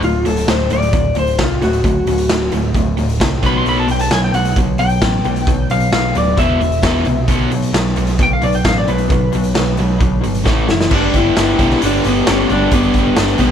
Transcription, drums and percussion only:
0.02 closed hi-hat medium
0.25 closed hi-hat medium
0.37 closed hi-hat medium
0.48 snare loud
0.48 closed hi-hat medium
0.70 closed hi-hat medium
0.82 closed hi-hat medium
0.93 kick loud
0.93 closed hi-hat medium
1.15 closed hi-hat medium
1.27 closed hi-hat medium
1.38 kick medium
1.38 snare loud
1.38 closed hi-hat medium
1.62 snare soft
1.62 closed hi-hat medium
1.73 closed hi-hat medium
1.84 kick loud
1.84 closed hi-hat medium
2.07 closed hi-hat medium
2.18 closed hi-hat medium
2.29 snare loud
2.29 closed hi-hat medium
2.52 closed hi-hat medium
2.74 kick loud
2.74 closed hi-hat medium
2.97 closed hi-hat medium
3.09 closed hi-hat medium
3.20 kick medium
3.20 snare loud
3.20 closed hi-hat medium
3.43 kick medium
3.43 closed hi-hat medium
3.66 closed hi-hat medium
3.88 closed hi-hat medium
3.99 closed hi-hat medium
4.11 snare loud
4.11 closed hi-hat medium
4.34 closed hi-hat medium
4.45 closed hi-hat medium
4.56 kick medium
4.56 closed hi-hat medium
4.78 closed hi-hat medium
4.89 closed hi-hat medium
5.01 kick medium
5.01 snare loud
5.01 closed hi-hat medium
5.24 closed hi-hat medium
5.36 closed hi-hat medium
5.47 kick loud
5.47 closed hi-hat medium
5.70 closed hi-hat medium
5.80 closed hi-hat medium
5.92 snare loud
5.92 closed hi-hat medium
6.15 closed hi-hat medium
6.37 kick loud
6.37 closed hi-hat medium
6.61 closed hi-hat medium
6.72 closed hi-hat medium
6.83 kick medium
6.83 snare loud
6.83 closed hi-hat medium
7.05 closed hi-hat medium
7.28 kick loud
7.28 closed hi-hat medium
7.51 closed hi-hat medium
7.62 closed hi-hat medium
7.74 snare loud
7.74 closed hi-hat medium
7.96 closed hi-hat medium
8.07 closed hi-hat medium
8.19 kick loud
8.19 closed hi-hat medium
8.42 closed hi-hat medium
8.52 closed hi-hat medium
8.65 kick medium
8.65 snare loud
8.65 closed hi-hat medium
8.87 closed hi-hat medium
8.98 closed hi-hat medium
9.10 kick loud
9.10 closed hi-hat medium
9.32 closed hi-hat medium
9.44 closed hi-hat medium
9.55 snare loud
9.55 closed hi-hat medium
9.77 closed hi-hat medium
10.00 kick loud
10.00 closed hi-hat medium
10.24 closed hi-hat medium
10.34 closed hi-hat medium
10.46 kick medium
10.46 snare medium
10.69 snare medium
10.81 snare medium
10.91 kick loud
10.91 crash loud
11.14 kick medium
11.14 closed hi-hat medium
11.36 snare loud
11.36 closed hi-hat loud
11.59 kick medium
11.59 closed hi-hat medium
11.70 snare soft
11.82 closed hi-hat loud
12.04 closed hi-hat medium
12.27 snare loud
12.27 closed hi-hat loud
12.49 closed hi-hat medium
12.71 kick loud
12.71 closed hi-hat loud
12.83 closed hi-hat soft
12.94 kick medium
12.94 closed hi-hat medium
13.16 snare loud
13.16 closed hi-hat medium
13.28 closed hi-hat medium
13.38 kick medium
13.38 closed hi-hat medium

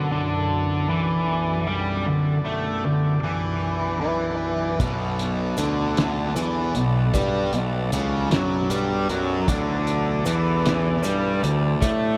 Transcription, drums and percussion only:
4.80 kick loud
4.80 closed hi-hat medium
4.80 maracas medium
5.19 closed hi-hat medium
5.19 maracas soft
5.57 closed hi-hat medium
5.57 maracas medium
5.97 snare loud
5.97 closed hi-hat loud
6.36 closed hi-hat medium
6.36 maracas medium
6.75 closed hi-hat medium
6.75 maracas soft
7.14 kick loud
7.14 closed hi-hat medium
7.14 maracas medium
7.53 closed hi-hat medium
7.53 maracas soft
7.92 closed hi-hat medium
7.92 maracas medium
8.31 snare loud
8.31 closed hi-hat medium
8.70 closed hi-hat medium
8.70 maracas loud
9.09 closed hi-hat medium
9.09 maracas soft
9.48 kick loud
9.48 closed hi-hat medium
9.48 maracas medium
9.87 closed hi-hat medium
9.87 maracas soft
10.26 closed hi-hat medium
10.26 maracas loud
10.66 snare loud
10.66 closed hi-hat loud
11.03 closed hi-hat medium
11.03 maracas loud
11.43 closed hi-hat medium
11.43 maracas soft
11.82 kick loud
11.82 closed hi-hat loud
11.82 maracas loud

